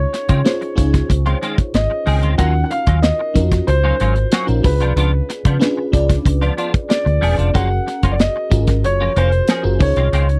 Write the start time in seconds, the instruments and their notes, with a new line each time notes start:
Already playing: fm electric piano C#4 D#4 F4 G#4 C#5, grand piano C#5
0.13 muted clean electric guitar stroke, snare, closed hi-hat
0.29 fingered electric bass C#3, clean electric guitar D#3 G#3 C4 F4, kick, closed hi-hat
0.44 fm electric piano C#4 D#4 F4 G#4 C5, muted clean electric guitar stroke, snare, closed hi-hat
0.61 muted clean electric guitar stroke, closed hi-hat
0.75 fingered electric bass C#2, fm electric piano C#4 D#4 F4 G#4 C#5, kick, closed hi-hat
0.94 muted clean electric guitar stroke, kick, snare, closed hi-hat
1.09 fingered electric bass C#2, muted clean electric guitar stroke, kick, closed hi-hat
1.26 clean electric guitar D#3 G#3 C4 F4, closed hi-hat
1.41 clean electric guitar D#3 G#3 C4 F4, closed hi-hat
1.58 muted clean electric guitar stroke, kick, closed hi-hat
1.74 fingered electric bass G#1, grand piano D#5, muted clean electric guitar stroke, snare, closed hi-hat
1.90 muted clean electric guitar stroke
2.06 fingered electric bass C#2, clean electric guitar D#3 G#3 C4 G#4, open hi-hat
2.22 fingered electric bass D2, clean electric guitar D#3 G#3 C4 F4, closed hi-hat
2.38 fingered electric bass D#2, clean electric guitar F#3 A#3 C#4 F4, fm electric piano C#4 D#4 F4 F#4 A#4, grand piano F#5, kick, closed hi-hat
2.54 muted clean electric guitar stroke
2.64 grand piano F#5
2.71 grand piano F5, muted clean electric guitar stroke, closed hi-hat
2.87 fingered electric bass D#2, clean electric guitar F#3 A#3 C#4 F4, kick, closed hi-hat
3.02 grand piano D#5, muted clean electric guitar stroke, snare, closed hi-hat
3.19 muted clean electric guitar stroke
3.34 fingered electric bass F2, fm electric piano C#4 D#4 F4 F#4 A#4, kick, closed hi-hat
3.52 muted clean electric guitar stroke, kick, snare, closed hi-hat
3.67 fingered electric bass C#2, grand piano C5, muted clean electric guitar stroke, closed hi-hat
3.84 clean electric guitar F#3 A#3 C#4 F4
4.00 fingered electric bass G#1, clean electric guitar F#3 A#3 C#4 F4, closed hi-hat
4.16 muted clean electric guitar stroke, closed hi-hat
4.32 clean electric guitar F#3 A#3 C#4 F#4, snare, closed hi-hat
4.47 fingered electric bass A#1, fm electric piano C#4 D#4 F4 F#4 A#4, closed hi-hat
4.63 fingered electric bass C#2, fm electric piano C#4 D4 F4 G#4 B4, grand piano B4, muted clean electric guitar stroke, kick, open hi-hat
4.80 fingered electric bass C2, clean electric guitar F3 B3 D4 F4, closed hi-hat
4.96 fingered electric bass C#2, clean electric guitar F3 B3 D4 F4, closed hi-hat
5.13 muted clean electric guitar stroke
5.29 muted clean electric guitar stroke, snare, closed hi-hat
5.45 fingered electric bass C#3, clean electric guitar F3 B3 D4 F4, kick, closed hi-hat
5.59 fm electric piano C#4 D4 F4 G#4 B4, muted clean electric guitar stroke, snare, closed hi-hat
5.77 muted clean electric guitar stroke
5.92 fingered electric bass C#2, fm electric piano C#4 D4 F4 G#4 D5, kick, closed hi-hat
6.09 muted clean electric guitar stroke, kick, snare, closed hi-hat
6.25 fingered electric bass C#2, muted clean electric guitar stroke, kick, closed hi-hat
6.41 clean electric guitar F3 B3 D4 F4, closed hi-hat
6.57 clean electric guitar F3 B3 D4 F4, closed hi-hat
6.73 muted clean electric guitar stroke, kick, closed hi-hat
6.89 grand piano D5, muted clean electric guitar stroke, snare, closed hi-hat
7.05 fingered electric bass D2, muted clean electric guitar stroke, closed hi-hat
7.21 fingered electric bass E1, clean electric guitar F3 B3 D4 G#4, open hi-hat
7.37 fingered electric bass F1, clean electric guitar F3 B3 D4 F4, closed hi-hat
7.54 clean electric guitar F3 A#3 C#4 F4, fm electric piano C#4 F#4 G#4 A#4, grand piano F#5, kick, closed hi-hat
7.71 muted clean electric guitar stroke
7.87 muted clean electric guitar stroke, snare, closed hi-hat
8.03 fingered electric bass F#1, clean electric guitar F3 A#3 C#4 F4, kick, closed hi-hat
8.12 grand piano D5
8.19 grand piano D#5, muted clean electric guitar stroke, snare, closed hi-hat
8.36 muted clean electric guitar stroke
8.50 fingered electric bass G#1, fm electric piano C#4 F4 F#4 G#4 A#4, kick, closed hi-hat
8.67 muted clean electric guitar stroke, kick, snare, closed hi-hat
8.84 fingered electric bass F#1, grand piano C#5, muted clean electric guitar stroke, closed hi-hat
9.01 clean electric guitar F3 A#3 C#4 F4
9.16 fingered electric bass F1, clean electric guitar F3 A#3 C#4 F4, grand piano C5, closed hi-hat
9.32 muted clean electric guitar stroke, closed hi-hat
9.48 clean electric guitar F3 A#3 C#4 G#4, snare, closed hi-hat
9.63 fingered electric bass F#1, fm electric piano C#4 F4 F#4 G#4 A#4, muted clean electric guitar stroke
9.79 fingered electric bass C#2, fm electric piano C#4 D#4 F4 G#4 A#4, grand piano C#5, muted clean electric guitar stroke, kick, open hi-hat
9.86 fm electric piano C#5
9.96 fingered electric bass C2, clean electric guitar D#3 G#3 C4 F4, closed hi-hat
10.13 fingered electric bass C#2, clean electric guitar D#3 G#3 C4 F4, closed hi-hat
10.29 muted clean electric guitar stroke, closed hi-hat